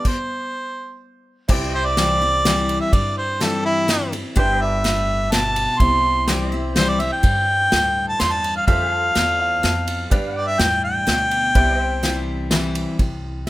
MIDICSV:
0, 0, Header, 1, 7, 480
1, 0, Start_track
1, 0, Key_signature, 0, "major"
1, 0, Tempo, 479233
1, 56, Time_signature, 3, 2, 24, 8
1, 13515, End_track
2, 0, Start_track
2, 0, Title_t, "Harmonica"
2, 0, Program_c, 0, 22
2, 77, Note_on_c, 0, 72, 69
2, 1027, Note_off_c, 0, 72, 0
2, 1745, Note_on_c, 0, 72, 96
2, 1861, Note_on_c, 0, 74, 111
2, 1876, Note_off_c, 0, 72, 0
2, 2789, Note_off_c, 0, 74, 0
2, 2814, Note_on_c, 0, 76, 90
2, 2940, Note_on_c, 0, 74, 89
2, 2955, Note_off_c, 0, 76, 0
2, 3170, Note_off_c, 0, 74, 0
2, 3183, Note_on_c, 0, 72, 82
2, 3427, Note_on_c, 0, 69, 85
2, 3442, Note_off_c, 0, 72, 0
2, 3654, Note_off_c, 0, 69, 0
2, 3660, Note_on_c, 0, 64, 102
2, 4123, Note_off_c, 0, 64, 0
2, 4386, Note_on_c, 0, 79, 99
2, 4626, Note_on_c, 0, 76, 99
2, 4641, Note_off_c, 0, 79, 0
2, 5327, Note_on_c, 0, 81, 102
2, 5342, Note_off_c, 0, 76, 0
2, 5805, Note_on_c, 0, 84, 108
2, 5820, Note_off_c, 0, 81, 0
2, 6275, Note_off_c, 0, 84, 0
2, 6766, Note_on_c, 0, 72, 96
2, 6897, Note_on_c, 0, 74, 91
2, 6912, Note_off_c, 0, 72, 0
2, 7015, Note_on_c, 0, 76, 91
2, 7030, Note_off_c, 0, 74, 0
2, 7126, Note_off_c, 0, 76, 0
2, 7139, Note_on_c, 0, 79, 114
2, 8067, Note_off_c, 0, 79, 0
2, 8098, Note_on_c, 0, 81, 94
2, 8221, Note_on_c, 0, 84, 91
2, 8236, Note_off_c, 0, 81, 0
2, 8332, Note_on_c, 0, 81, 96
2, 8347, Note_off_c, 0, 84, 0
2, 8565, Note_off_c, 0, 81, 0
2, 8578, Note_on_c, 0, 77, 97
2, 8682, Note_off_c, 0, 77, 0
2, 8688, Note_on_c, 0, 77, 108
2, 10090, Note_off_c, 0, 77, 0
2, 10372, Note_on_c, 0, 74, 98
2, 10493, Note_on_c, 0, 76, 109
2, 10508, Note_off_c, 0, 74, 0
2, 10618, Note_on_c, 0, 79, 102
2, 10633, Note_off_c, 0, 76, 0
2, 10848, Note_off_c, 0, 79, 0
2, 10861, Note_on_c, 0, 79, 104
2, 12256, Note_off_c, 0, 79, 0
2, 13515, End_track
3, 0, Start_track
3, 0, Title_t, "Pedal steel guitar"
3, 0, Program_c, 1, 26
3, 1501, Note_on_c, 1, 67, 70
3, 1507, Note_on_c, 1, 72, 63
3, 1527, Note_on_c, 1, 74, 69
3, 1777, Note_off_c, 1, 74, 0
3, 1777, Note_on_c, 1, 76, 69
3, 4349, Note_off_c, 1, 67, 0
3, 4352, Note_off_c, 1, 72, 0
3, 4362, Note_off_c, 1, 76, 0
3, 4376, Note_on_c, 1, 67, 71
3, 4383, Note_on_c, 1, 72, 72
3, 4398, Note_on_c, 1, 76, 66
3, 4583, Note_off_c, 1, 72, 0
3, 4583, Note_on_c, 1, 71, 72
3, 4648, Note_off_c, 1, 76, 0
3, 4648, Note_on_c, 1, 74, 66
3, 5800, Note_off_c, 1, 67, 0
3, 5804, Note_off_c, 1, 71, 0
3, 5811, Note_off_c, 1, 74, 0
3, 6292, Note_on_c, 1, 67, 73
3, 6302, Note_on_c, 1, 72, 70
3, 6310, Note_on_c, 1, 74, 67
3, 6560, Note_off_c, 1, 74, 0
3, 6560, Note_on_c, 1, 76, 67
3, 8667, Note_off_c, 1, 67, 0
3, 8673, Note_off_c, 1, 72, 0
3, 8676, Note_off_c, 1, 76, 0
3, 8694, Note_on_c, 1, 67, 69
3, 8699, Note_on_c, 1, 72, 73
3, 8709, Note_on_c, 1, 76, 66
3, 8909, Note_off_c, 1, 76, 0
3, 8909, Note_on_c, 1, 77, 66
3, 8944, Note_off_c, 1, 67, 0
3, 8944, Note_on_c, 1, 69, 69
3, 10118, Note_off_c, 1, 69, 0
3, 10119, Note_off_c, 1, 72, 0
3, 10125, Note_off_c, 1, 77, 0
3, 10134, Note_on_c, 1, 71, 75
3, 10141, Note_on_c, 1, 74, 71
3, 10153, Note_on_c, 1, 77, 71
3, 10404, Note_off_c, 1, 77, 0
3, 10404, Note_on_c, 1, 79, 71
3, 11558, Note_off_c, 1, 71, 0
3, 11562, Note_off_c, 1, 74, 0
3, 11568, Note_off_c, 1, 79, 0
3, 11572, Note_on_c, 1, 71, 72
3, 11580, Note_on_c, 1, 74, 69
3, 11596, Note_on_c, 1, 79, 69
3, 11772, Note_off_c, 1, 71, 0
3, 11772, Note_on_c, 1, 72, 72
3, 11831, Note_off_c, 1, 74, 0
3, 11831, Note_on_c, 1, 76, 69
3, 12999, Note_off_c, 1, 72, 0
3, 13001, Note_off_c, 1, 76, 0
3, 13010, Note_off_c, 1, 79, 0
3, 13515, End_track
4, 0, Start_track
4, 0, Title_t, "Grand piano"
4, 0, Program_c, 2, 0
4, 1482, Note_on_c, 2, 64, 68
4, 1488, Note_on_c, 2, 72, 75
4, 1489, Note_on_c, 2, 67, 66
4, 4328, Note_off_c, 2, 64, 0
4, 4331, Note_off_c, 2, 67, 0
4, 4331, Note_off_c, 2, 72, 0
4, 4371, Note_on_c, 2, 67, 55
4, 4372, Note_on_c, 2, 62, 59
4, 4382, Note_on_c, 2, 71, 69
4, 5783, Note_off_c, 2, 67, 0
4, 5784, Note_off_c, 2, 62, 0
4, 5789, Note_off_c, 2, 71, 0
4, 5812, Note_on_c, 2, 64, 58
4, 5817, Note_on_c, 2, 67, 54
4, 5820, Note_on_c, 2, 72, 66
4, 8652, Note_off_c, 2, 64, 0
4, 8654, Note_off_c, 2, 67, 0
4, 8655, Note_off_c, 2, 72, 0
4, 8691, Note_on_c, 2, 69, 56
4, 8692, Note_on_c, 2, 65, 58
4, 8701, Note_on_c, 2, 72, 66
4, 9410, Note_on_c, 2, 77, 72
4, 9634, Note_off_c, 2, 77, 0
4, 9649, Note_on_c, 2, 81, 75
4, 10097, Note_off_c, 2, 81, 0
4, 10102, Note_off_c, 2, 69, 0
4, 10103, Note_off_c, 2, 65, 0
4, 10107, Note_off_c, 2, 72, 0
4, 10117, Note_on_c, 2, 67, 75
4, 10120, Note_on_c, 2, 71, 65
4, 10126, Note_on_c, 2, 74, 83
4, 11535, Note_off_c, 2, 67, 0
4, 11536, Note_off_c, 2, 71, 0
4, 11540, Note_off_c, 2, 74, 0
4, 11567, Note_on_c, 2, 67, 71
4, 11572, Note_on_c, 2, 72, 65
4, 11574, Note_on_c, 2, 76, 78
4, 12510, Note_off_c, 2, 67, 0
4, 12510, Note_off_c, 2, 72, 0
4, 12514, Note_off_c, 2, 76, 0
4, 12525, Note_on_c, 2, 67, 61
4, 12525, Note_on_c, 2, 72, 57
4, 12529, Note_on_c, 2, 76, 62
4, 13009, Note_off_c, 2, 67, 0
4, 13009, Note_off_c, 2, 72, 0
4, 13010, Note_off_c, 2, 76, 0
4, 13515, End_track
5, 0, Start_track
5, 0, Title_t, "Steel-string acoustic guitar"
5, 0, Program_c, 3, 25
5, 1488, Note_on_c, 3, 48, 89
5, 1976, Note_on_c, 3, 52, 77
5, 1986, Note_on_c, 3, 55, 85
5, 1987, Note_on_c, 3, 60, 89
5, 1993, Note_on_c, 3, 64, 89
5, 2207, Note_off_c, 3, 52, 0
5, 2208, Note_off_c, 3, 64, 0
5, 2211, Note_off_c, 3, 55, 0
5, 2212, Note_off_c, 3, 60, 0
5, 2220, Note_on_c, 3, 64, 65
5, 2237, Note_on_c, 3, 60, 50
5, 2404, Note_off_c, 3, 48, 0
5, 2448, Note_off_c, 3, 64, 0
5, 2457, Note_off_c, 3, 60, 0
5, 2457, Note_on_c, 3, 52, 91
5, 2463, Note_on_c, 3, 55, 88
5, 2470, Note_on_c, 3, 60, 96
5, 2480, Note_on_c, 3, 64, 104
5, 2912, Note_off_c, 3, 52, 0
5, 2915, Note_off_c, 3, 55, 0
5, 2919, Note_off_c, 3, 60, 0
5, 2924, Note_off_c, 3, 64, 0
5, 2936, Note_on_c, 3, 43, 85
5, 3410, Note_on_c, 3, 52, 70
5, 3415, Note_on_c, 3, 55, 85
5, 3424, Note_on_c, 3, 60, 90
5, 3429, Note_on_c, 3, 64, 91
5, 3847, Note_off_c, 3, 43, 0
5, 3868, Note_off_c, 3, 52, 0
5, 3871, Note_off_c, 3, 55, 0
5, 3875, Note_off_c, 3, 60, 0
5, 3878, Note_off_c, 3, 64, 0
5, 3887, Note_on_c, 3, 52, 91
5, 3894, Note_on_c, 3, 55, 93
5, 3896, Note_on_c, 3, 60, 97
5, 3904, Note_on_c, 3, 64, 100
5, 4118, Note_off_c, 3, 64, 0
5, 4121, Note_off_c, 3, 52, 0
5, 4125, Note_off_c, 3, 55, 0
5, 4126, Note_off_c, 3, 60, 0
5, 4130, Note_on_c, 3, 64, 58
5, 4146, Note_on_c, 3, 60, 48
5, 4363, Note_off_c, 3, 64, 0
5, 4363, Note_on_c, 3, 43, 96
5, 4371, Note_off_c, 3, 60, 0
5, 4849, Note_on_c, 3, 45, 85
5, 5280, Note_off_c, 3, 43, 0
5, 5308, Note_off_c, 3, 45, 0
5, 5329, Note_on_c, 3, 47, 99
5, 5787, Note_off_c, 3, 47, 0
5, 5811, Note_on_c, 3, 48, 80
5, 6289, Note_on_c, 3, 52, 79
5, 6301, Note_on_c, 3, 55, 80
5, 6308, Note_on_c, 3, 60, 87
5, 6314, Note_on_c, 3, 64, 88
5, 6518, Note_off_c, 3, 64, 0
5, 6522, Note_off_c, 3, 52, 0
5, 6528, Note_off_c, 3, 55, 0
5, 6530, Note_on_c, 3, 64, 58
5, 6531, Note_off_c, 3, 60, 0
5, 6547, Note_on_c, 3, 60, 49
5, 6724, Note_off_c, 3, 48, 0
5, 6762, Note_off_c, 3, 64, 0
5, 6771, Note_off_c, 3, 60, 0
5, 6778, Note_on_c, 3, 52, 83
5, 6786, Note_on_c, 3, 55, 95
5, 6791, Note_on_c, 3, 60, 92
5, 6797, Note_on_c, 3, 64, 94
5, 6994, Note_off_c, 3, 64, 0
5, 7006, Note_off_c, 3, 52, 0
5, 7006, Note_on_c, 3, 64, 59
5, 7010, Note_off_c, 3, 55, 0
5, 7013, Note_off_c, 3, 60, 0
5, 7025, Note_on_c, 3, 60, 46
5, 7240, Note_off_c, 3, 64, 0
5, 7242, Note_on_c, 3, 43, 81
5, 7250, Note_off_c, 3, 60, 0
5, 7731, Note_on_c, 3, 45, 86
5, 8159, Note_off_c, 3, 43, 0
5, 8188, Note_off_c, 3, 45, 0
5, 8223, Note_on_c, 3, 43, 94
5, 8674, Note_off_c, 3, 43, 0
5, 8691, Note_on_c, 3, 41, 85
5, 9164, Note_off_c, 3, 41, 0
5, 9168, Note_on_c, 3, 40, 85
5, 9626, Note_off_c, 3, 40, 0
5, 9647, Note_on_c, 3, 41, 88
5, 10105, Note_off_c, 3, 41, 0
5, 10134, Note_on_c, 3, 43, 96
5, 10610, Note_on_c, 3, 45, 82
5, 11044, Note_off_c, 3, 43, 0
5, 11067, Note_off_c, 3, 45, 0
5, 11085, Note_on_c, 3, 47, 89
5, 11544, Note_off_c, 3, 47, 0
5, 11570, Note_on_c, 3, 48, 86
5, 12046, Note_on_c, 3, 52, 81
5, 12050, Note_on_c, 3, 55, 80
5, 12058, Note_on_c, 3, 60, 78
5, 12064, Note_on_c, 3, 64, 93
5, 12483, Note_off_c, 3, 48, 0
5, 12505, Note_off_c, 3, 52, 0
5, 12507, Note_off_c, 3, 55, 0
5, 12511, Note_off_c, 3, 60, 0
5, 12514, Note_off_c, 3, 64, 0
5, 12531, Note_on_c, 3, 52, 93
5, 12537, Note_on_c, 3, 55, 86
5, 12544, Note_on_c, 3, 60, 94
5, 12550, Note_on_c, 3, 64, 93
5, 12988, Note_off_c, 3, 52, 0
5, 12990, Note_off_c, 3, 55, 0
5, 12994, Note_off_c, 3, 60, 0
5, 12997, Note_off_c, 3, 64, 0
5, 13014, Note_on_c, 3, 48, 71
5, 13515, Note_off_c, 3, 48, 0
5, 13515, End_track
6, 0, Start_track
6, 0, Title_t, "Upright bass"
6, 0, Program_c, 4, 32
6, 1495, Note_on_c, 4, 36, 105
6, 2787, Note_off_c, 4, 36, 0
6, 2931, Note_on_c, 4, 43, 96
6, 4224, Note_off_c, 4, 43, 0
6, 4377, Note_on_c, 4, 31, 97
6, 5667, Note_off_c, 4, 31, 0
6, 5808, Note_on_c, 4, 36, 110
6, 7102, Note_off_c, 4, 36, 0
6, 7248, Note_on_c, 4, 43, 94
6, 7681, Note_off_c, 4, 43, 0
6, 7738, Note_on_c, 4, 38, 82
6, 8144, Note_off_c, 4, 38, 0
6, 8222, Note_on_c, 4, 40, 90
6, 8626, Note_off_c, 4, 40, 0
6, 8695, Note_on_c, 4, 41, 97
6, 9124, Note_off_c, 4, 41, 0
6, 9173, Note_on_c, 4, 40, 84
6, 9581, Note_off_c, 4, 40, 0
6, 9654, Note_on_c, 4, 41, 90
6, 10061, Note_off_c, 4, 41, 0
6, 10129, Note_on_c, 4, 43, 107
6, 10561, Note_off_c, 4, 43, 0
6, 10612, Note_on_c, 4, 40, 89
6, 11020, Note_off_c, 4, 40, 0
6, 11093, Note_on_c, 4, 38, 97
6, 11500, Note_off_c, 4, 38, 0
6, 11572, Note_on_c, 4, 36, 101
6, 12864, Note_off_c, 4, 36, 0
6, 13014, Note_on_c, 4, 36, 86
6, 13515, Note_off_c, 4, 36, 0
6, 13515, End_track
7, 0, Start_track
7, 0, Title_t, "Drums"
7, 49, Note_on_c, 9, 49, 82
7, 50, Note_on_c, 9, 36, 94
7, 149, Note_off_c, 9, 49, 0
7, 151, Note_off_c, 9, 36, 0
7, 1493, Note_on_c, 9, 49, 103
7, 1494, Note_on_c, 9, 36, 109
7, 1593, Note_off_c, 9, 49, 0
7, 1594, Note_off_c, 9, 36, 0
7, 1974, Note_on_c, 9, 38, 94
7, 1974, Note_on_c, 9, 51, 58
7, 2074, Note_off_c, 9, 38, 0
7, 2074, Note_off_c, 9, 51, 0
7, 2456, Note_on_c, 9, 38, 88
7, 2456, Note_on_c, 9, 51, 62
7, 2556, Note_off_c, 9, 38, 0
7, 2556, Note_off_c, 9, 51, 0
7, 2695, Note_on_c, 9, 51, 65
7, 2795, Note_off_c, 9, 51, 0
7, 2933, Note_on_c, 9, 36, 112
7, 2933, Note_on_c, 9, 51, 59
7, 3033, Note_off_c, 9, 36, 0
7, 3033, Note_off_c, 9, 51, 0
7, 3416, Note_on_c, 9, 38, 86
7, 3416, Note_on_c, 9, 51, 66
7, 3516, Note_off_c, 9, 38, 0
7, 3516, Note_off_c, 9, 51, 0
7, 3895, Note_on_c, 9, 38, 90
7, 3895, Note_on_c, 9, 51, 69
7, 3995, Note_off_c, 9, 38, 0
7, 3995, Note_off_c, 9, 51, 0
7, 4137, Note_on_c, 9, 51, 67
7, 4237, Note_off_c, 9, 51, 0
7, 4372, Note_on_c, 9, 36, 107
7, 4374, Note_on_c, 9, 51, 66
7, 4473, Note_off_c, 9, 36, 0
7, 4475, Note_off_c, 9, 51, 0
7, 4855, Note_on_c, 9, 38, 82
7, 4855, Note_on_c, 9, 51, 73
7, 4955, Note_off_c, 9, 38, 0
7, 4955, Note_off_c, 9, 51, 0
7, 5334, Note_on_c, 9, 38, 92
7, 5334, Note_on_c, 9, 51, 69
7, 5434, Note_off_c, 9, 38, 0
7, 5434, Note_off_c, 9, 51, 0
7, 5569, Note_on_c, 9, 51, 64
7, 5670, Note_off_c, 9, 51, 0
7, 5809, Note_on_c, 9, 36, 107
7, 5809, Note_on_c, 9, 51, 61
7, 5909, Note_off_c, 9, 36, 0
7, 5910, Note_off_c, 9, 51, 0
7, 6285, Note_on_c, 9, 38, 90
7, 6285, Note_on_c, 9, 51, 57
7, 6386, Note_off_c, 9, 38, 0
7, 6386, Note_off_c, 9, 51, 0
7, 6768, Note_on_c, 9, 38, 95
7, 6768, Note_on_c, 9, 51, 64
7, 6868, Note_off_c, 9, 38, 0
7, 6868, Note_off_c, 9, 51, 0
7, 7011, Note_on_c, 9, 51, 60
7, 7111, Note_off_c, 9, 51, 0
7, 7248, Note_on_c, 9, 51, 62
7, 7249, Note_on_c, 9, 36, 114
7, 7348, Note_off_c, 9, 51, 0
7, 7350, Note_off_c, 9, 36, 0
7, 7733, Note_on_c, 9, 38, 88
7, 7733, Note_on_c, 9, 51, 62
7, 7833, Note_off_c, 9, 38, 0
7, 7833, Note_off_c, 9, 51, 0
7, 8210, Note_on_c, 9, 38, 89
7, 8210, Note_on_c, 9, 51, 68
7, 8311, Note_off_c, 9, 38, 0
7, 8311, Note_off_c, 9, 51, 0
7, 8455, Note_on_c, 9, 51, 63
7, 8555, Note_off_c, 9, 51, 0
7, 8691, Note_on_c, 9, 36, 114
7, 8692, Note_on_c, 9, 51, 69
7, 8791, Note_off_c, 9, 36, 0
7, 8792, Note_off_c, 9, 51, 0
7, 9170, Note_on_c, 9, 38, 86
7, 9170, Note_on_c, 9, 51, 70
7, 9270, Note_off_c, 9, 38, 0
7, 9270, Note_off_c, 9, 51, 0
7, 9653, Note_on_c, 9, 38, 91
7, 9653, Note_on_c, 9, 51, 67
7, 9753, Note_off_c, 9, 38, 0
7, 9753, Note_off_c, 9, 51, 0
7, 9891, Note_on_c, 9, 51, 72
7, 9991, Note_off_c, 9, 51, 0
7, 10128, Note_on_c, 9, 51, 63
7, 10131, Note_on_c, 9, 36, 116
7, 10228, Note_off_c, 9, 51, 0
7, 10231, Note_off_c, 9, 36, 0
7, 10611, Note_on_c, 9, 38, 87
7, 10611, Note_on_c, 9, 51, 57
7, 10711, Note_off_c, 9, 38, 0
7, 10711, Note_off_c, 9, 51, 0
7, 11093, Note_on_c, 9, 38, 87
7, 11093, Note_on_c, 9, 51, 62
7, 11193, Note_off_c, 9, 38, 0
7, 11193, Note_off_c, 9, 51, 0
7, 11331, Note_on_c, 9, 51, 57
7, 11431, Note_off_c, 9, 51, 0
7, 11569, Note_on_c, 9, 51, 60
7, 11572, Note_on_c, 9, 36, 110
7, 11670, Note_off_c, 9, 51, 0
7, 11672, Note_off_c, 9, 36, 0
7, 12052, Note_on_c, 9, 38, 84
7, 12052, Note_on_c, 9, 51, 62
7, 12153, Note_off_c, 9, 38, 0
7, 12153, Note_off_c, 9, 51, 0
7, 12527, Note_on_c, 9, 38, 92
7, 12527, Note_on_c, 9, 51, 65
7, 12628, Note_off_c, 9, 38, 0
7, 12628, Note_off_c, 9, 51, 0
7, 12773, Note_on_c, 9, 51, 73
7, 12873, Note_off_c, 9, 51, 0
7, 13013, Note_on_c, 9, 51, 57
7, 13014, Note_on_c, 9, 36, 104
7, 13113, Note_off_c, 9, 51, 0
7, 13114, Note_off_c, 9, 36, 0
7, 13515, End_track
0, 0, End_of_file